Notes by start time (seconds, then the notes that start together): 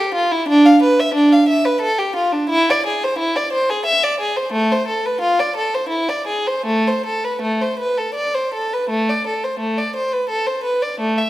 Already playing: G4
0.14 F4
0.31 E4
0.48 D4
0.65 F5
0.83 B4
0.99 E5
1.14 D4
1.32 F5
1.48 E5
1.65 B4
1.81 A4
1.98 G4
2.16 F4
2.32 D4
2.49 E4
2.70 D5
2.86 G#4
3.03 C5
3.19 E4
3.36 D5
3.53 C5
3.70 G#4
3.86 E5
4.03 D5
4.20 G#4
4.36 C5
4.53 A3
4.71 C5
4.88 A4
5.05 B4
5.21 F4
5.39 D5
5.56 A4
5.74 C5
5.89 E4
6.08 D5
6.27 G#4
6.47 C5
6.66 A3
6.87 C5
7.06 A4
7.24 B4
7.42 A3
7.61 C5
7.79 B4
7.97 A4
8.14 D5
8.34 C5
8.54 A4
8.73 B4
8.90 A3
9.09 D5
9.27 A4
9.44 C5
9.59 A3
9.78 D5
9.96 C5
10.12 B4
10.29 A4
10.46 C5
10.64 B4
10.82 D5
11.00 A3
11.18 E5